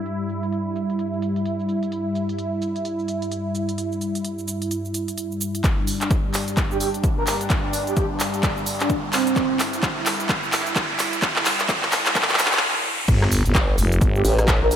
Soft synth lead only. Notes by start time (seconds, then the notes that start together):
6.71 G4
6.80 G4
7.17 A#4
7.27 A#4
7.87 G4
7.97 G4
8.80 D4
9.13 C4
14.15 G4
14.25 G4
14.62 A#4
14.71 A#4